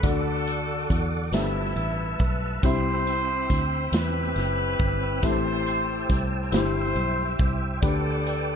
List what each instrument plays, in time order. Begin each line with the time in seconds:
Already playing: tonewheel organ A4
0.03 fingered electric bass D2, grand piano D3 D4 F#4 A4, horn section D4 F#4 A4, tonewheel organ D5 F#5 D6, kick, closed hi-hat, tambourine
0.47 closed hi-hat, tambourine
0.90 fingered electric bass E2, kick, closed hi-hat, tambourine
1.32 fingered electric bass G1, grand piano G2 F3 B3 G4 A4 E5, horn section A3 B3 E4, tonewheel organ B4 E5 A5 E6, snare, closed hi-hat, tambourine
1.76 fingered electric bass A1, closed hi-hat
2.19 fingered electric bass B1, horn section B4, kick, closed hi-hat
2.62 fingered electric bass C2, grand piano C3 C4 E4 G4 E5 B5, tonewheel organ C4 G5 B5, horn section E4 G4 C5, kick, closed hi-hat, tambourine
3.07 closed hi-hat, tambourine
3.50 fingered electric bass D2, kick, closed hi-hat, tambourine
3.92 fingered electric bass E2, horn section E4 G4 B4, snare, closed hi-hat, tambourine
4.36 fingered electric bass F#1, snare, closed hi-hat
4.79 fingered electric bass G1, kick, closed hi-hat
5.22 fingered electric bass A1, grand piano A2 C4 E4 G4 A4 E5, horn section E4 G4 C5, tonewheel organ C5 A5, kick, closed hi-hat, tambourine
5.67 closed hi-hat, tambourine
6.09 fingered electric bass C2, kick, closed hi-hat, tambourine
6.51 fingered electric bass G1, grand piano G2 E4 G4 C5, horn section E4 G4 C5, tonewheel organ C5 E5, snare, closed hi-hat, tambourine
6.95 fingered electric bass B1, closed hi-hat
7.39 fingered electric bass C2, kick, closed hi-hat
7.82 fingered electric bass D2, grand piano D3 D4 G4 B4, tonewheel organ B4 D5 D6, kick, closed hi-hat, tambourine
7.86 horn section D4 A4
8.27 closed hi-hat, tambourine